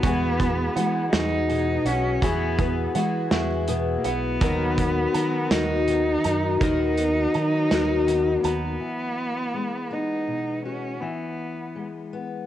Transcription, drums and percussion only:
0.03 kick loud
0.03 closed hi-hat medium
0.40 kick medium
0.40 closed hi-hat medium
0.77 closed hi-hat medium
1.13 snare loud
1.13 closed hi-hat medium
1.50 closed hi-hat medium
1.86 closed hi-hat medium
2.22 kick medium
2.22 closed hi-hat medium
2.59 kick medium
2.59 closed hi-hat medium
2.95 closed hi-hat medium
3.31 snare loud
3.31 closed hi-hat medium
3.68 closed hi-hat medium
4.04 closed hi-hat medium
4.41 kick loud
4.41 closed hi-hat medium
4.78 kick medium
4.78 closed hi-hat medium
5.15 closed hi-hat medium
5.51 snare loud
5.51 closed hi-hat medium
5.88 closed hi-hat medium
6.24 closed hi-hat medium
6.61 kick medium
6.61 closed hi-hat medium
6.98 closed hi-hat medium
7.34 closed hi-hat medium
7.71 snare medium
7.71 closed hi-hat medium
8.08 closed hi-hat medium
8.44 closed hi-hat medium

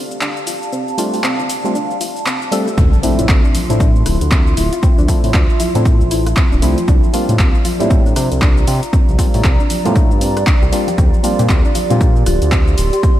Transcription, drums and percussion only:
0.11 shaker soft
0.21 clap loud
0.21 shaker soft
0.37 shaker soft
0.47 open hi-hat loud
0.47 shaker medium
0.62 shaker soft
0.73 shaker soft
0.88 shaker soft
0.98 open hi-hat medium
0.98 shaker medium
1.14 open hi-hat medium
1.14 shaker soft
1.24 clap loud
1.24 shaker soft
1.39 shaker soft
1.50 open hi-hat loud
1.50 shaker medium
1.65 shaker soft
1.75 shaker soft
1.91 shaker soft
2.01 open hi-hat loud
2.01 shaker medium
2.16 shaker soft
2.26 clap loud
2.26 shaker soft
2.42 shaker soft
2.52 open hi-hat loud
2.52 shaker medium
2.68 shaker soft
2.78 kick loud
2.78 closed hi-hat medium
2.78 shaker soft
2.93 high conga medium
2.93 shaker soft
3.03 open hi-hat loud
3.03 shaker medium
3.19 closed hi-hat medium
3.19 low conga loud
3.19 shaker soft
3.29 kick loud
3.29 clap loud
3.29 closed hi-hat medium
3.29 shaker soft
3.44 shaker soft
3.55 open hi-hat loud
3.55 high conga medium
3.55 shaker medium
3.70 closed hi-hat medium
3.70 low conga medium
3.70 shaker soft
3.80 kick loud
3.80 closed hi-hat medium
3.80 shaker soft
3.96 shaker soft
4.06 cross-stick medium
4.06 open hi-hat loud
4.06 high conga medium
4.06 shaker medium
4.21 closed hi-hat medium
4.21 shaker soft
4.32 kick loud
4.32 clap loud
4.32 closed hi-hat medium
4.32 shaker soft
4.47 shaker soft
4.57 open hi-hat loud
4.57 shaker medium
4.73 closed hi-hat medium
4.73 shaker soft
4.83 kick loud
4.83 closed hi-hat medium
4.83 shaker soft
4.98 high conga medium
4.98 shaker soft
5.08 kick medium
5.08 open hi-hat loud
5.08 shaker medium
5.24 open hi-hat medium
5.24 low conga medium
5.24 shaker soft
5.34 kick loud
5.34 cross-stick medium
5.34 clap loud
5.34 closed hi-hat medium
5.34 shaker soft
5.50 shaker soft
5.60 open hi-hat loud
5.60 high conga medium
5.60 shaker medium
5.75 closed hi-hat medium
5.75 low conga medium
5.75 shaker soft
5.85 kick loud
5.85 closed hi-hat medium
5.85 shaker soft
6.01 shaker soft
6.11 open hi-hat loud
6.11 shaker medium
6.27 cross-stick medium
6.27 closed hi-hat medium
6.27 shaker soft
6.37 kick loud
6.37 clap loud
6.37 closed hi-hat medium
6.37 shaker soft
6.52 shaker soft
6.62 open hi-hat loud
6.62 shaker medium
6.78 closed hi-hat medium
6.78 high conga loud
6.78 shaker soft
6.88 kick loud
6.88 closed hi-hat medium
6.88 shaker soft
7.03 high conga medium
7.03 shaker soft
7.14 open hi-hat loud
7.14 shaker medium
7.29 closed hi-hat medium
7.29 low conga medium
7.29 shaker soft
7.39 kick loud
7.39 clap loud
7.39 closed hi-hat medium
7.39 shaker soft
7.55 shaker soft
7.64 open hi-hat loud
7.64 high conga medium
7.64 shaker medium
7.80 closed hi-hat medium
7.80 low conga medium
7.80 shaker soft
7.90 kick loud
7.90 closed hi-hat medium
7.90 shaker soft
8.06 shaker soft
8.16 cross-stick medium
8.16 open hi-hat loud
8.16 high conga medium
8.16 shaker medium
8.32 closed hi-hat medium
8.32 shaker soft
8.42 kick loud
8.42 clap loud
8.42 closed hi-hat medium
8.42 shaker soft
8.57 shaker soft
8.68 open hi-hat loud
8.68 shaker medium
8.83 closed hi-hat medium
8.83 shaker soft
8.93 kick loud
8.93 closed hi-hat medium
8.93 shaker soft
9.09 high conga medium
9.09 shaker soft
9.19 kick medium
9.19 open hi-hat loud
9.19 shaker medium
9.34 open hi-hat medium
9.34 low conga medium
9.34 shaker soft
9.44 kick loud
9.44 cross-stick medium
9.44 clap loud
9.44 closed hi-hat medium
9.44 shaker soft
9.60 shaker soft
9.70 open hi-hat loud
9.70 high conga medium
9.70 shaker medium
9.85 closed hi-hat medium
9.85 low conga medium
9.85 shaker soft
9.96 kick loud
9.96 closed hi-hat medium
9.96 shaker soft
10.11 shaker soft
10.21 open hi-hat loud
10.21 shaker medium
10.37 cross-stick medium
10.37 closed hi-hat medium
10.37 shaker soft
10.47 kick loud
10.47 clap loud
10.47 closed hi-hat medium
10.47 shaker soft
10.62 shaker soft
10.73 open hi-hat loud
10.73 shaker medium
10.88 closed hi-hat medium
10.88 high conga medium
10.88 shaker soft
10.98 kick loud
10.98 closed hi-hat medium
10.98 shaker soft
11.13 high conga medium
11.13 shaker soft
11.24 open hi-hat loud
11.24 shaker medium
11.39 closed hi-hat medium
11.39 low conga medium
11.39 shaker soft
11.49 kick loud
11.49 clap loud
11.49 closed hi-hat medium
11.49 shaker soft
11.65 shaker soft
11.75 open hi-hat loud
11.75 high conga medium
11.75 shaker medium
11.90 closed hi-hat medium
11.90 low conga medium
11.90 shaker soft
12.01 kick loud
12.01 closed hi-hat medium
12.01 shaker soft
12.16 shaker soft
12.26 cross-stick medium
12.26 open hi-hat loud
12.26 high conga medium
12.26 shaker medium
12.42 closed hi-hat medium
12.42 shaker soft
12.52 kick loud
12.52 clap loud
12.52 closed hi-hat medium
12.52 shaker soft
12.68 shaker soft
12.78 open hi-hat loud
12.78 shaker medium
12.93 closed hi-hat medium
12.93 shaker soft
13.03 kick loud
13.03 closed hi-hat soft
13.03 shaker soft

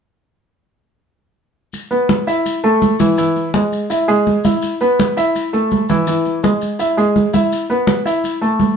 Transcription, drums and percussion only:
1.73 high conga soft
1.73 maracas medium
1.91 high conga soft
1.91 maracas soft
2.09 high conga medium
2.09 maracas soft
2.27 high conga soft
2.27 maracas medium
2.46 high conga soft
2.46 maracas medium
2.64 high conga soft
2.64 maracas soft
2.82 high conga medium
2.82 maracas soft
3.00 high conga medium
3.00 maracas medium
3.18 high conga soft
3.18 maracas medium
3.36 high conga soft
3.36 maracas soft
3.54 high conga medium
3.54 maracas soft
3.72 high conga soft
3.72 maracas medium
3.90 high conga soft
3.90 maracas medium
4.09 high conga soft
4.09 maracas soft
4.27 high conga medium
4.27 maracas soft
4.44 high conga medium
4.44 maracas medium
4.62 high conga soft
4.62 maracas medium
4.81 high conga soft
4.81 maracas soft
4.99 high conga medium
4.99 maracas soft
5.17 high conga soft
5.17 maracas medium
5.35 high conga soft
5.35 maracas medium
5.54 high conga soft
5.54 maracas soft
5.71 high conga medium
5.71 maracas soft
5.89 high conga medium
5.89 maracas medium
6.07 high conga soft
6.07 maracas medium
6.25 high conga soft
6.25 maracas soft
6.43 high conga medium
6.43 maracas soft
6.62 high conga soft
6.62 maracas medium
6.79 high conga soft
6.79 maracas medium
6.98 high conga soft
6.98 maracas soft
7.16 high conga medium
7.16 maracas soft
7.34 high conga medium
7.34 maracas medium
7.52 high conga soft
7.52 maracas medium
7.70 high conga soft
7.70 maracas soft
7.87 high conga medium
7.87 maracas soft
8.05 high conga soft
8.05 maracas medium
8.24 high conga soft
8.24 maracas medium
8.42 high conga soft
8.42 maracas soft
8.60 high conga medium
8.60 maracas soft

